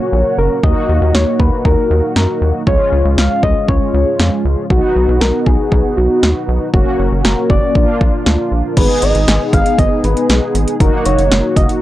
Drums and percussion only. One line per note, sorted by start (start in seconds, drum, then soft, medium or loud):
0.63 kick loud
1.15 snare loud
1.40 kick medium
1.65 kick medium
2.16 snare loud
2.67 kick loud
3.18 snare loud
3.43 kick medium
3.68 kick medium
4.20 snare loud
4.70 kick loud
5.21 snare loud
5.46 kick medium
5.72 kick medium
6.23 snare loud
6.74 kick loud
7.25 snare loud
7.50 kick medium
7.75 kick medium
8.01 kick medium
8.26 snare loud
8.77 kick loud
8.77 closed hi-hat medium
8.77 crash medium
9.02 closed hi-hat medium
9.15 closed hi-hat medium
9.28 snare loud
9.28 closed hi-hat medium
9.53 kick medium
9.53 closed hi-hat medium
9.66 closed hi-hat medium
9.79 kick medium
9.79 closed hi-hat medium
10.04 closed hi-hat medium
10.17 closed hi-hat soft
10.30 snare loud
10.30 closed hi-hat medium
10.55 closed hi-hat medium
10.68 closed hi-hat medium
10.80 kick loud
10.80 closed hi-hat medium
11.05 closed hi-hat medium
11.19 closed hi-hat medium
11.32 snare loud
11.32 closed hi-hat medium
11.56 kick medium
11.56 closed hi-hat medium
11.69 closed hi-hat medium